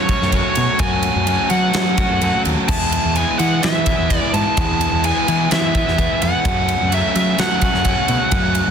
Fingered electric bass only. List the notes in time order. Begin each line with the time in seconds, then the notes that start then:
Already playing: F#3
0.21 F#2
0.57 B2
0.80 F#2
1.15 F#2
1.51 F#3
1.75 F#3
2.10 F#2
2.46 D#2
2.69 E2
3.05 E2
3.40 E3
3.64 E3
3.98 E2
4.34 G#2
4.58 E2
4.92 E2
5.28 E3
5.52 E3
5.88 E2
6.22 F2
6.46 F#2
6.81 F#2
7.16 F#3
7.39 F#3
7.74 F#2
8.09 B2
8.32 F#2
8.68 F#2